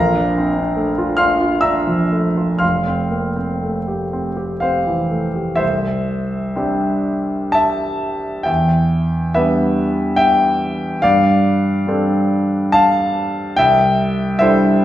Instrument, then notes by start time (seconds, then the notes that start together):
grand piano
Already playing: A#1 A#4 F5 A#5
0.15 D4
0.37 C4
0.57 D4
0.76 A3
0.98 F4
1.17 D4 F5 C6 F6
1.41 F4
1.61 D4 E5 A#5 E6
1.87 F3
2.12 A3
2.37 F4
2.59 F1 F5 C6 F6
2.87 C4
3.10 A#3
3.36 C4
3.63 A3
3.88 G4
4.13 C4
4.37 G4
4.60 C4 C5 F5
4.87 E3
5.11 A3
5.36 G4
5.56 C2 C5 E5
6.56 G3 C4 D4 G4
7.52 E5 A5
8.43 E2 E5 G5
9.34 G3 B3 D4 G4 B4 E5
10.16 E5 G5
11.02 G2 D5 F5
11.87 G3 C4 D4 A4
12.72 F5 A5
13.56 C2 E5 G5
14.39 G3 D4 E4 A4 C5 E5